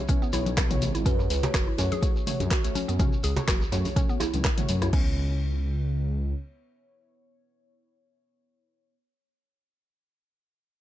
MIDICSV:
0, 0, Header, 1, 8, 480
1, 0, Start_track
1, 0, Key_signature, 4, "minor"
1, 0, Tempo, 483871
1, 1053, Time_signature, 4, 2, 24, 8
1, 10720, End_track
2, 0, Start_track
2, 0, Title_t, "Kalimba"
2, 0, Program_c, 0, 108
2, 1052, Note_on_c, 0, 71, 110
2, 1275, Note_off_c, 0, 71, 0
2, 1294, Note_on_c, 0, 71, 102
2, 1539, Note_on_c, 0, 73, 113
2, 1540, Note_off_c, 0, 71, 0
2, 1766, Note_off_c, 0, 73, 0
2, 1778, Note_on_c, 0, 73, 105
2, 4376, Note_off_c, 0, 73, 0
2, 10720, End_track
3, 0, Start_track
3, 0, Title_t, "Synth stab"
3, 0, Program_c, 1, 62
3, 91, Note_on_c, 1, 59, 99
3, 91, Note_on_c, 1, 64, 84
3, 91, Note_on_c, 1, 73, 109
3, 306, Note_off_c, 1, 59, 0
3, 306, Note_off_c, 1, 64, 0
3, 306, Note_off_c, 1, 73, 0
3, 329, Note_on_c, 1, 59, 89
3, 329, Note_on_c, 1, 64, 81
3, 330, Note_on_c, 1, 73, 103
3, 471, Note_off_c, 1, 59, 0
3, 471, Note_off_c, 1, 64, 0
3, 472, Note_off_c, 1, 73, 0
3, 699, Note_on_c, 1, 73, 99
3, 700, Note_on_c, 1, 59, 94
3, 700, Note_on_c, 1, 64, 88
3, 908, Note_off_c, 1, 59, 0
3, 908, Note_off_c, 1, 64, 0
3, 908, Note_off_c, 1, 73, 0
3, 1049, Note_on_c, 1, 57, 78
3, 1049, Note_on_c, 1, 66, 68
3, 1050, Note_on_c, 1, 73, 83
3, 1191, Note_off_c, 1, 57, 0
3, 1191, Note_off_c, 1, 66, 0
3, 1192, Note_off_c, 1, 73, 0
3, 1420, Note_on_c, 1, 57, 82
3, 1420, Note_on_c, 1, 66, 74
3, 1420, Note_on_c, 1, 73, 89
3, 1543, Note_off_c, 1, 57, 0
3, 1543, Note_off_c, 1, 66, 0
3, 1543, Note_off_c, 1, 73, 0
3, 1772, Note_on_c, 1, 73, 103
3, 1773, Note_on_c, 1, 66, 81
3, 1774, Note_on_c, 1, 57, 97
3, 1986, Note_off_c, 1, 73, 0
3, 1987, Note_off_c, 1, 57, 0
3, 1987, Note_off_c, 1, 66, 0
3, 2011, Note_on_c, 1, 66, 87
3, 2011, Note_on_c, 1, 73, 103
3, 2012, Note_on_c, 1, 57, 94
3, 2225, Note_off_c, 1, 66, 0
3, 2225, Note_off_c, 1, 73, 0
3, 2226, Note_off_c, 1, 57, 0
3, 2252, Note_on_c, 1, 66, 79
3, 2252, Note_on_c, 1, 73, 104
3, 2253, Note_on_c, 1, 57, 92
3, 2393, Note_off_c, 1, 57, 0
3, 2393, Note_off_c, 1, 66, 0
3, 2393, Note_off_c, 1, 73, 0
3, 2622, Note_on_c, 1, 57, 92
3, 2622, Note_on_c, 1, 73, 101
3, 2623, Note_on_c, 1, 66, 86
3, 2830, Note_off_c, 1, 57, 0
3, 2830, Note_off_c, 1, 66, 0
3, 2830, Note_off_c, 1, 73, 0
3, 2971, Note_on_c, 1, 66, 67
3, 2971, Note_on_c, 1, 73, 83
3, 2973, Note_on_c, 1, 57, 76
3, 3112, Note_off_c, 1, 66, 0
3, 3112, Note_off_c, 1, 73, 0
3, 3113, Note_off_c, 1, 57, 0
3, 3341, Note_on_c, 1, 66, 75
3, 3342, Note_on_c, 1, 57, 77
3, 3342, Note_on_c, 1, 73, 88
3, 3464, Note_off_c, 1, 57, 0
3, 3464, Note_off_c, 1, 66, 0
3, 3464, Note_off_c, 1, 73, 0
3, 3691, Note_on_c, 1, 73, 99
3, 3692, Note_on_c, 1, 57, 97
3, 3692, Note_on_c, 1, 66, 83
3, 3905, Note_off_c, 1, 73, 0
3, 3906, Note_off_c, 1, 57, 0
3, 3906, Note_off_c, 1, 66, 0
3, 3931, Note_on_c, 1, 57, 92
3, 3931, Note_on_c, 1, 66, 86
3, 3931, Note_on_c, 1, 73, 98
3, 4145, Note_off_c, 1, 57, 0
3, 4146, Note_off_c, 1, 66, 0
3, 4146, Note_off_c, 1, 73, 0
3, 4544, Note_on_c, 1, 57, 94
3, 4544, Note_on_c, 1, 66, 91
3, 4544, Note_on_c, 1, 73, 103
3, 4867, Note_off_c, 1, 57, 0
3, 4867, Note_off_c, 1, 66, 0
3, 4867, Note_off_c, 1, 73, 0
3, 4893, Note_on_c, 1, 59, 84
3, 4893, Note_on_c, 1, 64, 79
3, 4894, Note_on_c, 1, 73, 94
3, 8877, Note_off_c, 1, 59, 0
3, 8877, Note_off_c, 1, 64, 0
3, 8878, Note_off_c, 1, 73, 0
3, 10720, End_track
4, 0, Start_track
4, 0, Title_t, "Synth pluck"
4, 0, Program_c, 2, 84
4, 85, Note_on_c, 2, 61, 108
4, 206, Note_off_c, 2, 61, 0
4, 218, Note_on_c, 2, 59, 77
4, 280, Note_off_c, 2, 59, 0
4, 327, Note_on_c, 2, 64, 101
4, 447, Note_off_c, 2, 64, 0
4, 938, Note_on_c, 2, 64, 78
4, 1039, Note_off_c, 2, 64, 0
4, 1048, Note_on_c, 2, 61, 101
4, 1174, Note_off_c, 2, 61, 0
4, 1528, Note_on_c, 2, 66, 110
4, 1648, Note_off_c, 2, 66, 0
4, 1659, Note_on_c, 2, 64, 75
4, 1760, Note_off_c, 2, 64, 0
4, 1769, Note_on_c, 2, 61, 75
4, 1895, Note_off_c, 2, 61, 0
4, 1903, Note_on_c, 2, 68, 110
4, 2007, Note_off_c, 2, 68, 0
4, 2491, Note_on_c, 2, 66, 105
4, 2609, Note_off_c, 2, 66, 0
4, 2730, Note_on_c, 2, 61, 73
4, 2855, Note_off_c, 2, 61, 0
4, 2860, Note_on_c, 2, 59, 82
4, 2921, Note_off_c, 2, 59, 0
4, 2973, Note_on_c, 2, 61, 101
4, 3090, Note_off_c, 2, 61, 0
4, 3210, Note_on_c, 2, 68, 77
4, 3328, Note_off_c, 2, 68, 0
4, 3452, Note_on_c, 2, 66, 110
4, 3570, Note_off_c, 2, 66, 0
4, 3930, Note_on_c, 2, 61, 105
4, 4049, Note_off_c, 2, 61, 0
4, 4061, Note_on_c, 2, 59, 81
4, 4121, Note_off_c, 2, 59, 0
4, 4170, Note_on_c, 2, 64, 100
4, 4289, Note_off_c, 2, 64, 0
4, 4780, Note_on_c, 2, 64, 81
4, 4880, Note_off_c, 2, 64, 0
4, 4893, Note_on_c, 2, 61, 94
4, 5116, Note_off_c, 2, 61, 0
4, 10720, End_track
5, 0, Start_track
5, 0, Title_t, "Detuned saw bass"
5, 0, Program_c, 3, 39
5, 331, Note_on_c, 3, 35, 80
5, 697, Note_off_c, 3, 35, 0
5, 703, Note_on_c, 3, 35, 102
5, 815, Note_on_c, 3, 32, 100
5, 830, Note_off_c, 3, 35, 0
5, 921, Note_off_c, 3, 32, 0
5, 943, Note_on_c, 3, 32, 90
5, 1033, Note_off_c, 3, 32, 0
5, 1049, Note_on_c, 3, 42, 101
5, 1252, Note_off_c, 3, 42, 0
5, 1292, Note_on_c, 3, 37, 111
5, 1399, Note_off_c, 3, 37, 0
5, 1529, Note_on_c, 3, 30, 101
5, 1638, Note_off_c, 3, 30, 0
5, 1772, Note_on_c, 3, 42, 96
5, 1880, Note_off_c, 3, 42, 0
5, 2382, Note_on_c, 3, 42, 82
5, 2472, Note_off_c, 3, 42, 0
5, 2866, Note_on_c, 3, 42, 83
5, 2955, Note_off_c, 3, 42, 0
5, 3211, Note_on_c, 3, 37, 110
5, 3319, Note_off_c, 3, 37, 0
5, 3450, Note_on_c, 3, 30, 105
5, 3559, Note_off_c, 3, 30, 0
5, 3693, Note_on_c, 3, 42, 94
5, 3800, Note_off_c, 3, 42, 0
5, 4305, Note_on_c, 3, 37, 103
5, 4394, Note_off_c, 3, 37, 0
5, 4652, Note_on_c, 3, 42, 94
5, 4853, Note_off_c, 3, 42, 0
5, 4892, Note_on_c, 3, 37, 95
5, 6293, Note_off_c, 3, 37, 0
5, 10720, End_track
6, 0, Start_track
6, 0, Title_t, "Djembe"
6, 222, Note_on_c, 9, 63, 60
6, 322, Note_off_c, 9, 63, 0
6, 339, Note_on_c, 9, 62, 73
6, 438, Note_off_c, 9, 62, 0
6, 576, Note_on_c, 9, 63, 99
6, 675, Note_off_c, 9, 63, 0
6, 817, Note_on_c, 9, 63, 65
6, 916, Note_off_c, 9, 63, 0
6, 1181, Note_on_c, 9, 63, 83
6, 1281, Note_off_c, 9, 63, 0
6, 1423, Note_on_c, 9, 62, 104
6, 1428, Note_on_c, 9, 63, 67
6, 1522, Note_off_c, 9, 62, 0
6, 1527, Note_off_c, 9, 63, 0
6, 1766, Note_on_c, 9, 63, 87
6, 1771, Note_on_c, 9, 62, 80
6, 1865, Note_off_c, 9, 63, 0
6, 1870, Note_off_c, 9, 62, 0
6, 2004, Note_on_c, 9, 63, 58
6, 2103, Note_off_c, 9, 63, 0
6, 2383, Note_on_c, 9, 63, 85
6, 2483, Note_off_c, 9, 63, 0
6, 2613, Note_on_c, 9, 63, 60
6, 2712, Note_off_c, 9, 63, 0
6, 2969, Note_on_c, 9, 63, 96
6, 3069, Note_off_c, 9, 63, 0
6, 3207, Note_on_c, 9, 63, 62
6, 3306, Note_off_c, 9, 63, 0
6, 3338, Note_on_c, 9, 62, 117
6, 3437, Note_off_c, 9, 62, 0
6, 3571, Note_on_c, 9, 63, 84
6, 3670, Note_off_c, 9, 63, 0
6, 3692, Note_on_c, 9, 62, 80
6, 3791, Note_off_c, 9, 62, 0
6, 3819, Note_on_c, 9, 63, 71
6, 3918, Note_off_c, 9, 63, 0
6, 4167, Note_on_c, 9, 63, 100
6, 4173, Note_on_c, 9, 62, 84
6, 4266, Note_off_c, 9, 63, 0
6, 4273, Note_off_c, 9, 62, 0
6, 4409, Note_on_c, 9, 63, 61
6, 4508, Note_off_c, 9, 63, 0
6, 4780, Note_on_c, 9, 63, 90
6, 4879, Note_off_c, 9, 63, 0
6, 10720, End_track
7, 0, Start_track
7, 0, Title_t, "Shekere"
7, 81, Note_on_c, 9, 82, 57
7, 180, Note_off_c, 9, 82, 0
7, 222, Note_on_c, 9, 82, 37
7, 321, Note_off_c, 9, 82, 0
7, 326, Note_on_c, 9, 82, 91
7, 425, Note_off_c, 9, 82, 0
7, 460, Note_on_c, 9, 82, 33
7, 559, Note_off_c, 9, 82, 0
7, 563, Note_on_c, 9, 82, 50
7, 663, Note_off_c, 9, 82, 0
7, 701, Note_on_c, 9, 82, 35
7, 800, Note_off_c, 9, 82, 0
7, 813, Note_on_c, 9, 82, 89
7, 913, Note_off_c, 9, 82, 0
7, 943, Note_on_c, 9, 82, 39
7, 1042, Note_off_c, 9, 82, 0
7, 1049, Note_on_c, 9, 82, 49
7, 1148, Note_off_c, 9, 82, 0
7, 1184, Note_on_c, 9, 82, 34
7, 1284, Note_off_c, 9, 82, 0
7, 1296, Note_on_c, 9, 82, 84
7, 1396, Note_off_c, 9, 82, 0
7, 1428, Note_on_c, 9, 82, 37
7, 1527, Note_off_c, 9, 82, 0
7, 1533, Note_on_c, 9, 82, 56
7, 1632, Note_off_c, 9, 82, 0
7, 1776, Note_on_c, 9, 82, 96
7, 1875, Note_off_c, 9, 82, 0
7, 1906, Note_on_c, 9, 82, 37
7, 2006, Note_off_c, 9, 82, 0
7, 2013, Note_on_c, 9, 82, 50
7, 2112, Note_off_c, 9, 82, 0
7, 2145, Note_on_c, 9, 82, 39
7, 2244, Note_off_c, 9, 82, 0
7, 2254, Note_on_c, 9, 82, 81
7, 2353, Note_off_c, 9, 82, 0
7, 2389, Note_on_c, 9, 82, 33
7, 2488, Note_off_c, 9, 82, 0
7, 2497, Note_on_c, 9, 82, 47
7, 2596, Note_off_c, 9, 82, 0
7, 2625, Note_on_c, 9, 82, 36
7, 2724, Note_off_c, 9, 82, 0
7, 2737, Note_on_c, 9, 82, 103
7, 2837, Note_off_c, 9, 82, 0
7, 2864, Note_on_c, 9, 82, 36
7, 2963, Note_off_c, 9, 82, 0
7, 2971, Note_on_c, 9, 82, 47
7, 3071, Note_off_c, 9, 82, 0
7, 3101, Note_on_c, 9, 82, 38
7, 3201, Note_off_c, 9, 82, 0
7, 3208, Note_on_c, 9, 82, 80
7, 3308, Note_off_c, 9, 82, 0
7, 3346, Note_on_c, 9, 82, 41
7, 3446, Note_off_c, 9, 82, 0
7, 3456, Note_on_c, 9, 82, 58
7, 3555, Note_off_c, 9, 82, 0
7, 3587, Note_on_c, 9, 82, 41
7, 3686, Note_off_c, 9, 82, 0
7, 3698, Note_on_c, 9, 82, 99
7, 3798, Note_off_c, 9, 82, 0
7, 3823, Note_on_c, 9, 82, 35
7, 3922, Note_off_c, 9, 82, 0
7, 3940, Note_on_c, 9, 82, 48
7, 4040, Note_off_c, 9, 82, 0
7, 4054, Note_on_c, 9, 82, 33
7, 4153, Note_off_c, 9, 82, 0
7, 4178, Note_on_c, 9, 82, 88
7, 4278, Note_off_c, 9, 82, 0
7, 4303, Note_on_c, 9, 82, 33
7, 4402, Note_off_c, 9, 82, 0
7, 4409, Note_on_c, 9, 82, 51
7, 4508, Note_off_c, 9, 82, 0
7, 4545, Note_on_c, 9, 82, 39
7, 4644, Note_off_c, 9, 82, 0
7, 4652, Note_on_c, 9, 82, 95
7, 4751, Note_off_c, 9, 82, 0
7, 4786, Note_on_c, 9, 82, 37
7, 4885, Note_off_c, 9, 82, 0
7, 10720, End_track
8, 0, Start_track
8, 0, Title_t, "Drums"
8, 88, Note_on_c, 9, 36, 109
8, 89, Note_on_c, 9, 42, 59
8, 91, Note_on_c, 9, 64, 94
8, 94, Note_on_c, 9, 63, 65
8, 187, Note_off_c, 9, 36, 0
8, 189, Note_off_c, 9, 42, 0
8, 190, Note_off_c, 9, 64, 0
8, 194, Note_off_c, 9, 63, 0
8, 331, Note_on_c, 9, 46, 88
8, 331, Note_on_c, 9, 63, 66
8, 430, Note_off_c, 9, 46, 0
8, 430, Note_off_c, 9, 63, 0
8, 460, Note_on_c, 9, 42, 43
8, 460, Note_on_c, 9, 63, 106
8, 560, Note_off_c, 9, 42, 0
8, 560, Note_off_c, 9, 63, 0
8, 568, Note_on_c, 9, 36, 117
8, 572, Note_on_c, 9, 37, 102
8, 572, Note_on_c, 9, 39, 104
8, 572, Note_on_c, 9, 42, 54
8, 580, Note_on_c, 9, 63, 83
8, 667, Note_off_c, 9, 36, 0
8, 671, Note_off_c, 9, 37, 0
8, 671, Note_off_c, 9, 39, 0
8, 671, Note_off_c, 9, 42, 0
8, 679, Note_off_c, 9, 63, 0
8, 701, Note_on_c, 9, 42, 56
8, 701, Note_on_c, 9, 47, 107
8, 800, Note_off_c, 9, 42, 0
8, 800, Note_off_c, 9, 47, 0
8, 807, Note_on_c, 9, 64, 73
8, 812, Note_on_c, 9, 46, 87
8, 907, Note_off_c, 9, 64, 0
8, 912, Note_off_c, 9, 46, 0
8, 942, Note_on_c, 9, 42, 44
8, 1041, Note_off_c, 9, 42, 0
8, 1048, Note_on_c, 9, 36, 114
8, 1051, Note_on_c, 9, 42, 64
8, 1051, Note_on_c, 9, 64, 95
8, 1147, Note_off_c, 9, 36, 0
8, 1150, Note_off_c, 9, 42, 0
8, 1151, Note_off_c, 9, 64, 0
8, 1292, Note_on_c, 9, 46, 92
8, 1392, Note_off_c, 9, 46, 0
8, 1420, Note_on_c, 9, 64, 108
8, 1421, Note_on_c, 9, 42, 50
8, 1519, Note_off_c, 9, 64, 0
8, 1521, Note_off_c, 9, 42, 0
8, 1529, Note_on_c, 9, 36, 122
8, 1533, Note_on_c, 9, 37, 106
8, 1533, Note_on_c, 9, 39, 110
8, 1533, Note_on_c, 9, 42, 59
8, 1628, Note_off_c, 9, 36, 0
8, 1633, Note_off_c, 9, 37, 0
8, 1633, Note_off_c, 9, 39, 0
8, 1633, Note_off_c, 9, 42, 0
8, 1770, Note_on_c, 9, 46, 92
8, 1870, Note_off_c, 9, 46, 0
8, 1903, Note_on_c, 9, 42, 46
8, 1907, Note_on_c, 9, 63, 83
8, 2002, Note_off_c, 9, 42, 0
8, 2006, Note_off_c, 9, 63, 0
8, 2009, Note_on_c, 9, 36, 116
8, 2010, Note_on_c, 9, 42, 57
8, 2108, Note_off_c, 9, 36, 0
8, 2109, Note_off_c, 9, 42, 0
8, 2252, Note_on_c, 9, 63, 61
8, 2253, Note_on_c, 9, 46, 94
8, 2253, Note_on_c, 9, 47, 87
8, 2351, Note_off_c, 9, 63, 0
8, 2353, Note_off_c, 9, 46, 0
8, 2353, Note_off_c, 9, 47, 0
8, 2382, Note_on_c, 9, 63, 114
8, 2383, Note_on_c, 9, 42, 48
8, 2481, Note_off_c, 9, 63, 0
8, 2483, Note_off_c, 9, 42, 0
8, 2490, Note_on_c, 9, 36, 108
8, 2492, Note_on_c, 9, 37, 94
8, 2492, Note_on_c, 9, 39, 107
8, 2492, Note_on_c, 9, 42, 59
8, 2589, Note_off_c, 9, 36, 0
8, 2591, Note_off_c, 9, 37, 0
8, 2591, Note_off_c, 9, 39, 0
8, 2591, Note_off_c, 9, 42, 0
8, 2623, Note_on_c, 9, 42, 58
8, 2722, Note_off_c, 9, 42, 0
8, 2728, Note_on_c, 9, 63, 105
8, 2732, Note_on_c, 9, 46, 91
8, 2827, Note_off_c, 9, 63, 0
8, 2832, Note_off_c, 9, 46, 0
8, 2866, Note_on_c, 9, 42, 48
8, 2965, Note_off_c, 9, 42, 0
8, 2970, Note_on_c, 9, 36, 117
8, 2970, Note_on_c, 9, 64, 112
8, 2972, Note_on_c, 9, 42, 58
8, 2972, Note_on_c, 9, 47, 99
8, 3069, Note_off_c, 9, 64, 0
8, 3070, Note_off_c, 9, 36, 0
8, 3071, Note_off_c, 9, 42, 0
8, 3071, Note_off_c, 9, 47, 0
8, 3212, Note_on_c, 9, 46, 94
8, 3312, Note_off_c, 9, 46, 0
8, 3341, Note_on_c, 9, 64, 107
8, 3343, Note_on_c, 9, 42, 48
8, 3440, Note_off_c, 9, 64, 0
8, 3443, Note_off_c, 9, 42, 0
8, 3451, Note_on_c, 9, 36, 123
8, 3454, Note_on_c, 9, 37, 110
8, 3454, Note_on_c, 9, 39, 114
8, 3454, Note_on_c, 9, 42, 60
8, 3550, Note_off_c, 9, 36, 0
8, 3554, Note_off_c, 9, 37, 0
8, 3554, Note_off_c, 9, 39, 0
8, 3554, Note_off_c, 9, 42, 0
8, 3694, Note_on_c, 9, 46, 96
8, 3793, Note_off_c, 9, 46, 0
8, 3822, Note_on_c, 9, 46, 53
8, 3829, Note_on_c, 9, 63, 84
8, 3922, Note_off_c, 9, 46, 0
8, 3928, Note_off_c, 9, 63, 0
8, 3932, Note_on_c, 9, 36, 116
8, 3933, Note_on_c, 9, 42, 63
8, 3935, Note_on_c, 9, 64, 108
8, 3936, Note_on_c, 9, 63, 71
8, 4031, Note_off_c, 9, 36, 0
8, 4032, Note_off_c, 9, 42, 0
8, 4035, Note_off_c, 9, 63, 0
8, 4035, Note_off_c, 9, 64, 0
8, 4171, Note_on_c, 9, 46, 96
8, 4172, Note_on_c, 9, 63, 59
8, 4270, Note_off_c, 9, 46, 0
8, 4271, Note_off_c, 9, 63, 0
8, 4302, Note_on_c, 9, 42, 49
8, 4319, Note_on_c, 9, 63, 104
8, 4401, Note_off_c, 9, 42, 0
8, 4410, Note_on_c, 9, 37, 102
8, 4410, Note_on_c, 9, 39, 105
8, 4410, Note_on_c, 9, 42, 59
8, 4411, Note_on_c, 9, 36, 109
8, 4418, Note_off_c, 9, 63, 0
8, 4418, Note_on_c, 9, 63, 93
8, 4509, Note_off_c, 9, 37, 0
8, 4509, Note_off_c, 9, 39, 0
8, 4509, Note_off_c, 9, 42, 0
8, 4510, Note_off_c, 9, 36, 0
8, 4517, Note_off_c, 9, 63, 0
8, 4539, Note_on_c, 9, 42, 59
8, 4539, Note_on_c, 9, 47, 95
8, 4639, Note_off_c, 9, 42, 0
8, 4639, Note_off_c, 9, 47, 0
8, 4649, Note_on_c, 9, 46, 93
8, 4649, Note_on_c, 9, 64, 86
8, 4748, Note_off_c, 9, 46, 0
8, 4748, Note_off_c, 9, 64, 0
8, 4780, Note_on_c, 9, 37, 65
8, 4780, Note_on_c, 9, 42, 48
8, 4879, Note_off_c, 9, 37, 0
8, 4879, Note_off_c, 9, 42, 0
8, 4890, Note_on_c, 9, 49, 91
8, 4891, Note_on_c, 9, 36, 120
8, 4989, Note_off_c, 9, 49, 0
8, 4990, Note_off_c, 9, 36, 0
8, 10720, End_track
0, 0, End_of_file